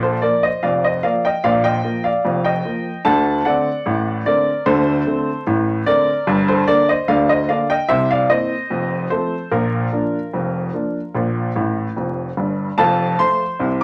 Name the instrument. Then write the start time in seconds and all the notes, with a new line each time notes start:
upright piano
Already playing: A#1 A#2
0.03 A4 C5
0.22 F3 A#3 A#4 D5
0.43 C5 D#5
0.63 F1 F2 D5 F5
0.84 C5 D#5
1.03 F3 A#3 D5 F5
1.25 D#5 G5
1.44 A#1 A#2 D5 F5
1.64 D#5 G5
1.84 F3 A#3
2.04 D5 F5
2.25 F1 F2
2.44 D#5 G5
2.65 F3 A#3
3.05 D2 D3 F#5 A5
3.45 D3 A3 C4 D5 F#5
3.86 A1 A2
4.26 D3 A3 C4 A#4 D5
4.66 D2 D3 A4 C5
5.07 D3 A3 C4
5.47 A1 A2
5.86 D3 A3 C4 A#4 D5
6.27 G1 G2
6.48 A4 C5
6.67 D3 A#3 D4 A#4 D5
6.89 C5 D#5
7.08 D2 D3 D5 F5
7.29 C5 D#5
7.49 D3 A#3 D4 D5 F5
7.70 D#5 G5
7.89 C2 C3 C5 E5
8.11 D5 F5
8.30 E3 A#3 C4 C5 D#5
8.70 F1 F2
9.10 F3 A3 C4 A4 C5
9.51 A#1 A#2 F4 A#4
9.92 F3 A#3 D4
10.33 F1 F2
10.74 F3 A#3 D4
11.15 A#1 A#2
11.56 A1 A2
11.96 F1 F2
12.37 G1 G2
12.78 F1 F2 A4 F5 A5
13.19 F3 A3 F4 C5 C6
13.59 C2 C3